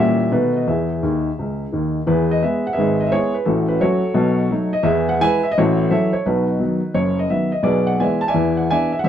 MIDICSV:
0, 0, Header, 1, 2, 480
1, 0, Start_track
1, 0, Key_signature, 4, "major"
1, 0, Tempo, 349447
1, 911, Time_signature, 4, 2, 24, 8
1, 12481, End_track
2, 0, Start_track
2, 0, Title_t, "Upright piano"
2, 0, Program_c, 0, 0
2, 0, Note_on_c, 0, 46, 63
2, 0, Note_on_c, 0, 52, 38
2, 0, Note_on_c, 0, 55, 41
2, 0, Note_on_c, 0, 61, 44
2, 0, Note_on_c, 0, 67, 57
2, 0, Note_on_c, 0, 76, 76
2, 205, Control_c, 0, 64, 127
2, 218, Note_off_c, 0, 52, 0
2, 234, Note_off_c, 0, 55, 0
2, 234, Note_off_c, 0, 61, 0
2, 362, Note_off_c, 0, 46, 0
2, 414, Note_off_c, 0, 67, 0
2, 432, Note_off_c, 0, 76, 0
2, 434, Note_on_c, 0, 47, 64
2, 436, Note_on_c, 0, 51, 39
2, 442, Control_c, 0, 64, 0
2, 444, Note_on_c, 0, 71, 64
2, 450, Note_on_c, 0, 57, 41
2, 453, Note_on_c, 0, 59, 41
2, 463, Note_on_c, 0, 63, 46
2, 675, Control_c, 0, 64, 127
2, 699, Note_off_c, 0, 51, 0
2, 709, Note_off_c, 0, 57, 0
2, 711, Note_off_c, 0, 59, 0
2, 746, Note_off_c, 0, 63, 0
2, 758, Note_off_c, 0, 71, 0
2, 776, Note_on_c, 0, 75, 57
2, 841, Note_off_c, 0, 47, 0
2, 924, Note_off_c, 0, 75, 0
2, 926, Note_on_c, 0, 40, 56
2, 929, Control_c, 0, 64, 0
2, 931, Note_on_c, 0, 76, 54
2, 949, Note_on_c, 0, 68, 44
2, 1162, Control_c, 0, 64, 127
2, 1328, Note_off_c, 0, 40, 0
2, 1406, Control_c, 0, 64, 0
2, 1411, Note_on_c, 0, 39, 56
2, 1423, Note_on_c, 0, 51, 54
2, 1765, Note_off_c, 0, 39, 0
2, 1772, Note_off_c, 0, 51, 0
2, 1906, Note_on_c, 0, 49, 43
2, 1909, Note_on_c, 0, 37, 42
2, 2254, Note_off_c, 0, 49, 0
2, 2256, Note_off_c, 0, 37, 0
2, 2368, Note_on_c, 0, 51, 51
2, 2381, Note_on_c, 0, 39, 45
2, 2632, Note_off_c, 0, 68, 0
2, 2679, Note_off_c, 0, 76, 0
2, 2723, Note_off_c, 0, 51, 0
2, 2731, Note_off_c, 0, 39, 0
2, 2835, Note_on_c, 0, 52, 58
2, 2843, Note_on_c, 0, 71, 67
2, 2847, Note_on_c, 0, 40, 63
2, 2858, Note_on_c, 0, 64, 47
2, 2858, Note_on_c, 0, 68, 46
2, 3081, Control_c, 0, 64, 127
2, 3140, Note_off_c, 0, 64, 0
2, 3140, Note_off_c, 0, 68, 0
2, 3154, Note_off_c, 0, 71, 0
2, 3177, Note_on_c, 0, 75, 70
2, 3242, Note_off_c, 0, 52, 0
2, 3249, Note_off_c, 0, 40, 0
2, 3325, Control_c, 0, 64, 0
2, 3328, Note_off_c, 0, 75, 0
2, 3334, Note_on_c, 0, 76, 67
2, 3344, Note_on_c, 0, 56, 40
2, 3350, Note_on_c, 0, 59, 53
2, 3356, Note_on_c, 0, 71, 51
2, 3365, Note_on_c, 0, 68, 52
2, 3600, Note_off_c, 0, 56, 0
2, 3604, Note_off_c, 0, 59, 0
2, 3629, Note_off_c, 0, 71, 0
2, 3634, Note_off_c, 0, 68, 0
2, 3639, Note_off_c, 0, 76, 0
2, 3664, Note_on_c, 0, 78, 71
2, 3729, Note_off_c, 0, 78, 0
2, 3749, Note_on_c, 0, 76, 72
2, 3765, Note_on_c, 0, 68, 54
2, 3767, Note_on_c, 0, 71, 62
2, 3815, Note_on_c, 0, 32, 53
2, 3824, Note_on_c, 0, 44, 71
2, 4033, Control_c, 0, 64, 127
2, 4110, Note_off_c, 0, 68, 0
2, 4110, Note_off_c, 0, 71, 0
2, 4127, Note_off_c, 0, 76, 0
2, 4128, Note_on_c, 0, 75, 60
2, 4201, Note_off_c, 0, 75, 0
2, 4212, Note_on_c, 0, 76, 67
2, 4214, Note_off_c, 0, 32, 0
2, 4218, Note_off_c, 0, 44, 0
2, 4283, Note_off_c, 0, 76, 0
2, 4284, Control_c, 0, 64, 0
2, 4284, Note_on_c, 0, 73, 87
2, 4285, Note_on_c, 0, 56, 44
2, 4286, Note_on_c, 0, 59, 45
2, 4302, Note_on_c, 0, 68, 64
2, 4306, Note_on_c, 0, 64, 53
2, 4545, Note_off_c, 0, 56, 0
2, 4546, Note_off_c, 0, 59, 0
2, 4582, Note_off_c, 0, 68, 0
2, 4584, Note_off_c, 0, 64, 0
2, 4592, Note_on_c, 0, 71, 56
2, 4593, Note_off_c, 0, 73, 0
2, 4746, Note_on_c, 0, 69, 66
2, 4752, Note_on_c, 0, 45, 66
2, 4755, Note_off_c, 0, 71, 0
2, 4756, Note_on_c, 0, 33, 55
2, 4762, Note_on_c, 0, 66, 50
2, 4765, Note_on_c, 0, 61, 57
2, 5001, Control_c, 0, 64, 127
2, 5051, Note_off_c, 0, 66, 0
2, 5053, Note_off_c, 0, 61, 0
2, 5061, Note_on_c, 0, 71, 66
2, 5064, Note_off_c, 0, 69, 0
2, 5160, Note_off_c, 0, 45, 0
2, 5162, Note_off_c, 0, 33, 0
2, 5229, Note_off_c, 0, 71, 0
2, 5232, Note_on_c, 0, 54, 48
2, 5232, Note_on_c, 0, 61, 48
2, 5233, Note_on_c, 0, 57, 46
2, 5233, Note_on_c, 0, 73, 75
2, 5246, Note_on_c, 0, 69, 67
2, 5247, Control_c, 0, 64, 0
2, 5250, Note_on_c, 0, 66, 57
2, 5496, Note_off_c, 0, 54, 0
2, 5496, Note_off_c, 0, 57, 0
2, 5496, Note_off_c, 0, 61, 0
2, 5689, Note_on_c, 0, 47, 75
2, 5695, Note_on_c, 0, 35, 62
2, 5957, Control_c, 0, 64, 127
2, 6106, Note_off_c, 0, 47, 0
2, 6110, Note_off_c, 0, 35, 0
2, 6191, Note_on_c, 0, 54, 46
2, 6196, Note_on_c, 0, 57, 49
2, 6207, Control_c, 0, 64, 0
2, 6212, Note_on_c, 0, 63, 47
2, 6454, Note_off_c, 0, 54, 0
2, 6458, Note_off_c, 0, 57, 0
2, 6458, Note_off_c, 0, 69, 0
2, 6460, Note_off_c, 0, 66, 0
2, 6470, Note_off_c, 0, 63, 0
2, 6497, Note_on_c, 0, 75, 75
2, 6507, Note_off_c, 0, 73, 0
2, 6635, Note_on_c, 0, 76, 79
2, 6638, Note_on_c, 0, 40, 80
2, 6639, Note_on_c, 0, 52, 60
2, 6657, Note_on_c, 0, 71, 63
2, 6658, Note_on_c, 0, 68, 69
2, 6666, Note_off_c, 0, 75, 0
2, 6916, Control_c, 0, 64, 127
2, 6956, Note_off_c, 0, 71, 0
2, 6957, Note_off_c, 0, 68, 0
2, 6968, Note_off_c, 0, 76, 0
2, 6990, Note_on_c, 0, 78, 85
2, 7059, Note_off_c, 0, 40, 0
2, 7060, Note_off_c, 0, 52, 0
2, 7152, Note_off_c, 0, 78, 0
2, 7155, Note_on_c, 0, 52, 46
2, 7160, Note_on_c, 0, 80, 102
2, 7165, Note_on_c, 0, 56, 52
2, 7167, Control_c, 0, 64, 0
2, 7176, Note_on_c, 0, 64, 64
2, 7181, Note_on_c, 0, 76, 71
2, 7182, Note_on_c, 0, 71, 82
2, 7417, Note_off_c, 0, 52, 0
2, 7425, Note_off_c, 0, 56, 0
2, 7432, Note_off_c, 0, 64, 0
2, 7443, Note_off_c, 0, 76, 0
2, 7460, Note_off_c, 0, 71, 0
2, 7463, Note_on_c, 0, 76, 79
2, 7470, Note_off_c, 0, 80, 0
2, 7547, Note_off_c, 0, 76, 0
2, 7575, Note_on_c, 0, 75, 84
2, 7643, Note_off_c, 0, 75, 0
2, 7663, Note_on_c, 0, 33, 77
2, 7666, Note_on_c, 0, 73, 72
2, 7668, Note_on_c, 0, 66, 68
2, 7669, Note_on_c, 0, 45, 85
2, 7683, Note_on_c, 0, 69, 66
2, 7871, Control_c, 0, 64, 127
2, 8056, Note_off_c, 0, 33, 0
2, 8060, Note_off_c, 0, 45, 0
2, 8096, Note_off_c, 0, 66, 0
2, 8101, Note_off_c, 0, 69, 0
2, 8104, Note_off_c, 0, 73, 0
2, 8105, Note_on_c, 0, 52, 51
2, 8112, Note_on_c, 0, 76, 75
2, 8117, Note_on_c, 0, 54, 48
2, 8121, Note_on_c, 0, 64, 47
2, 8121, Note_on_c, 0, 69, 62
2, 8125, Note_on_c, 0, 73, 59
2, 8129, Control_c, 0, 64, 0
2, 8370, Note_off_c, 0, 52, 0
2, 8378, Note_off_c, 0, 54, 0
2, 8382, Note_off_c, 0, 64, 0
2, 8399, Note_off_c, 0, 73, 0
2, 8409, Note_off_c, 0, 69, 0
2, 8420, Note_on_c, 0, 73, 68
2, 8426, Note_off_c, 0, 76, 0
2, 8587, Note_off_c, 0, 73, 0
2, 8597, Note_on_c, 0, 35, 53
2, 8600, Note_on_c, 0, 47, 56
2, 8602, Note_on_c, 0, 71, 64
2, 8613, Note_on_c, 0, 66, 48
2, 8622, Note_on_c, 0, 63, 44
2, 8834, Control_c, 0, 64, 127
2, 9002, Note_off_c, 0, 35, 0
2, 9003, Note_off_c, 0, 47, 0
2, 9065, Note_on_c, 0, 54, 43
2, 9075, Note_on_c, 0, 51, 44
2, 9078, Note_on_c, 0, 59, 47
2, 9086, Control_c, 0, 64, 0
2, 9330, Note_off_c, 0, 54, 0
2, 9337, Note_off_c, 0, 51, 0
2, 9339, Note_off_c, 0, 59, 0
2, 9506, Note_off_c, 0, 66, 0
2, 9510, Note_off_c, 0, 63, 0
2, 9539, Note_on_c, 0, 42, 52
2, 9540, Note_on_c, 0, 73, 78
2, 9549, Note_on_c, 0, 30, 61
2, 9555, Note_off_c, 0, 71, 0
2, 9860, Note_off_c, 0, 73, 0
2, 9878, Note_on_c, 0, 75, 59
2, 9951, Note_off_c, 0, 42, 0
2, 9957, Note_off_c, 0, 30, 0
2, 10026, Note_on_c, 0, 76, 67
2, 10031, Note_on_c, 0, 51, 30
2, 10031, Note_on_c, 0, 54, 36
2, 10036, Note_off_c, 0, 75, 0
2, 10044, Note_on_c, 0, 59, 46
2, 10294, Note_off_c, 0, 51, 0
2, 10295, Note_off_c, 0, 54, 0
2, 10304, Note_off_c, 0, 59, 0
2, 10329, Note_on_c, 0, 75, 58
2, 10343, Note_off_c, 0, 76, 0
2, 10476, Note_on_c, 0, 47, 59
2, 10482, Note_on_c, 0, 35, 61
2, 10486, Note_on_c, 0, 74, 73
2, 10491, Note_on_c, 0, 71, 52
2, 10493, Note_on_c, 0, 68, 58
2, 10501, Note_off_c, 0, 75, 0
2, 10748, Control_c, 0, 64, 127
2, 10793, Note_off_c, 0, 71, 0
2, 10794, Note_off_c, 0, 68, 0
2, 10807, Note_on_c, 0, 78, 73
2, 10813, Note_off_c, 0, 74, 0
2, 10898, Note_off_c, 0, 47, 0
2, 10902, Note_off_c, 0, 35, 0
2, 10980, Note_off_c, 0, 78, 0
2, 10985, Note_on_c, 0, 52, 44
2, 10990, Note_on_c, 0, 80, 69
2, 10991, Note_on_c, 0, 59, 48
2, 10995, Note_on_c, 0, 56, 47
2, 11000, Note_on_c, 0, 74, 57
2, 11009, Note_on_c, 0, 76, 58
2, 11010, Control_c, 0, 64, 0
2, 11251, Note_off_c, 0, 52, 0
2, 11255, Note_off_c, 0, 59, 0
2, 11258, Note_off_c, 0, 56, 0
2, 11278, Note_on_c, 0, 81, 74
2, 11289, Note_off_c, 0, 74, 0
2, 11294, Note_off_c, 0, 76, 0
2, 11306, Note_off_c, 0, 80, 0
2, 11374, Note_off_c, 0, 81, 0
2, 11375, Note_on_c, 0, 80, 79
2, 11390, Note_on_c, 0, 74, 63
2, 11392, Note_on_c, 0, 76, 62
2, 11458, Note_on_c, 0, 40, 69
2, 11461, Note_on_c, 0, 52, 64
2, 11716, Control_c, 0, 64, 127
2, 11759, Note_off_c, 0, 74, 0
2, 11760, Note_off_c, 0, 76, 0
2, 11773, Note_on_c, 0, 78, 64
2, 11780, Note_off_c, 0, 80, 0
2, 11872, Note_off_c, 0, 40, 0
2, 11874, Note_off_c, 0, 52, 0
2, 11944, Note_off_c, 0, 78, 0
2, 11958, Note_on_c, 0, 80, 88
2, 11966, Control_c, 0, 64, 0
2, 11966, Note_on_c, 0, 52, 44
2, 11971, Note_on_c, 0, 62, 48
2, 11972, Note_on_c, 0, 59, 40
2, 11972, Note_on_c, 0, 74, 65
2, 11978, Note_on_c, 0, 76, 68
2, 12226, Note_off_c, 0, 52, 0
2, 12230, Note_off_c, 0, 62, 0
2, 12231, Note_off_c, 0, 59, 0
2, 12238, Note_off_c, 0, 76, 0
2, 12256, Note_off_c, 0, 74, 0
2, 12258, Note_on_c, 0, 76, 66
2, 12270, Note_off_c, 0, 80, 0
2, 12345, Note_off_c, 0, 76, 0
2, 12352, Note_on_c, 0, 78, 78
2, 12417, Note_on_c, 0, 33, 59
2, 12422, Note_on_c, 0, 76, 84
2, 12429, Note_on_c, 0, 45, 69
2, 12433, Note_off_c, 0, 78, 0
2, 12481, Note_off_c, 0, 33, 0
2, 12481, Note_off_c, 0, 45, 0
2, 12481, Note_off_c, 0, 76, 0
2, 12481, End_track
0, 0, End_of_file